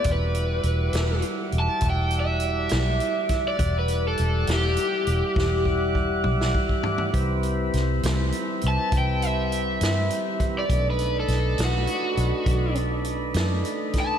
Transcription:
<<
  \new Staff \with { instrumentName = "Overdriven electric guitar" } { \time 12/8 \key e \minor \tempo 4. = 68 b'2 r8 a''8 g''8 e''2~ e''16 d''16~ | d''16 b'8 a'8. g'2 r2 r8 | r2 r8 a''8 g''8 e''2~ e''16 d''16~ | d''16 b'8 a'8. fis'2 r2 a''8 | }
  \new Staff \with { instrumentName = "Tonewheel organ" } { \time 12/8 \key e \minor <g e' fis' d''>1. | <g e' d'' fis''>1. | <g c' e' b'>1. | <a d' dis' b'>1. | }
  \new Staff \with { instrumentName = "Fingered electric bass" } { \clef bass \time 12/8 \key e \minor e,,4 e,,8 e,,8 r8 e,,16 r16 e,,4. b,,8 r4 | e,,4 e,,8 e,,8 r8 e,,16 r16 e,,4. b,,8 r4 | c,4 c,8 c,8 r8 c,16 r16 c,4. g,8 r4 | b,,4 b,,8 b,,8 r8 b,,16 r16 b,,4. fis,8 r4 | }
  \new DrumStaff \with { instrumentName = "Drums" } \drummode { \time 12/8 <hh bd>8 hh8 hh8 <hh sn>8 hh8 hh8 <hh bd>8 hh8 hh8 <hh sn>8 hh8 <hh bd sn>8 | <hh bd>8 hh8 hh8 <hh sn>8 hh8 hh8 <bd sn>8 bd8 bd8 toml16 sn16 bd16 bd16 tomfh16 tomfh16 | <hh bd>8 hh8 <hh sn>8 <hh sn>8 hh8 hh8 <hh bd>8 hh8 hh8 <hh sn>8 hh8 <hh bd>8 | <hh bd>8 hh8 <hh sn>8 <hh sn>8 hh8 hh8 <hh bd>8 hh8 hh8 <hh sn>8 hh8 <hh bd sn>8 | }
>>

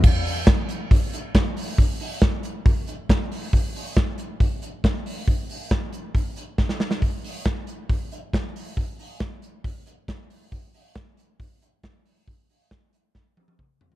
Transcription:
\new DrumStaff \with { instrumentName = "Drums" } \drummode { \time 4/4 \tempo 4 = 137 <cymc bd>8 <hho hhp>8 <hho hhp bd sn>8 <hho hhp>8 <hho hhp bd>8 <hho hhp>8 <hho hhp bd sn>8 <hho hhp>8 | <hho hhp bd>8 <hho hhp>8 <hho hhp bd sn>8 <hho hhp>8 <hho hhp bd>8 <hho hhp>8 <hho hhp bd sn>8 <hho hhp>8 | <hho hhp bd>8 <hho hhp>8 <hho hhp bd sn>8 <hho hhp>8 <hho hhp bd>8 <hho hhp>8 <hho hhp bd sn>8 <hho hhp>8 | <hho hhp bd>8 <hho hhp>8 <hho hhp bd sn>8 <hho hhp>8 <hho hhp bd>8 <hho hhp>8 <bd sn>16 sn16 sn16 sn16 |
<hho hhp bd>8 <hho hhp>8 <hho hhp bd sn>8 <hho hhp>8 <hho hhp bd>8 <hho hhp>8 <hho hhp bd sn>8 <hho hhp>8 | <hho hhp bd>8 <hho hhp>8 <hho hhp bd sn>8 <hho hhp>8 <hho hhp bd>8 <hho hhp>8 <hho hhp bd sn>8 <hho hhp>8 | <hho hhp bd>8 <hho hhp>8 <hho hhp bd sn>8 <hho hhp>8 <hho hhp bd>8 <hho hhp>8 <hho hhp bd sn>8 <hho hhp>8 | <hho hhp bd>8 <hho hhp>8 <hho hhp bd sn>8 <hho hhp>8 <bd sn>8 tommh16 tommh16 <bd toml>8 tomfh16 tomfh16 | }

